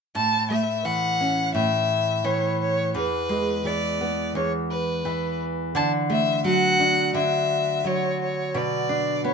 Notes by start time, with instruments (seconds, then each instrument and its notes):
0.15 nylon-string guitar A2, violin A5
0.50 nylon-string guitar A3, violin E5
0.85 nylon-string guitar E3, violin F#5
1.21 nylon-string guitar C#4
1.55 nylon-string guitar A2, violin E5
2.24 nylon-string guitar E3, violin C#5
2.61 violin C#5
2.95 nylon-string guitar E2, violin B4
3.29 nylon-string guitar G#3
3.65 nylon-string guitar E3, violin D5
4.01 nylon-string guitar B3
4.35 nylon-string guitar E2, violin C#5
4.70 violin B4
5.05 nylon-string guitar E3
5.75 nylon-string guitar D3, violin A5
6.10 nylon-string guitar A3, violin E5
6.44 nylon-string guitar F#3, violin F#5
6.79 nylon-string guitar D4
7.14 nylon-string guitar D3, violin E5
7.84 nylon-string guitar F#3, violin C#5
8.22 violin C#5
8.54 nylon-string guitar B2, violin D5
8.89 nylon-string guitar D4
9.24 nylon-string guitar B3, violin C#5